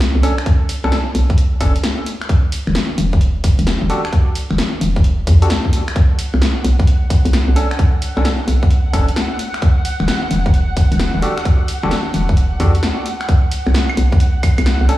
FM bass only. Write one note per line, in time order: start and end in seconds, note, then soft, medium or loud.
0.15 0.21 B1 medium
0.84 0.90 B1 medium
1.15 1.58 B1 loud
1.61 1.72 F#1 medium
2.67 2.73 E1 medium
2.98 3.53 E1 loud
3.59 3.75 E1 loud
3.82 3.88 E1 medium
4.51 4.57 E1 medium
4.81 5.24 E1 loud
5.27 5.39 E2 loud
6.34 6.40 B1 medium
6.64 7.20 B1 loud
7.25 7.41 B1 loud
7.48 7.54 B1 medium
8.17 8.23 B1 loud
8.48 8.91 B1 loud
8.93 9.05 F#1 medium
10.00 10.06 E1 medium
10.31 10.86 E1 loud
10.92 11.08 E1 loud
11.15 11.21 E1 medium
11.83 11.89 E1 loud
12.14 12.57 E1 loud
12.60 12.71 E2 medium
13.67 13.73 B1 loud
13.97 14.53 B1 loud
14.58 14.74 B1 loud
14.81 14.87 B1 medium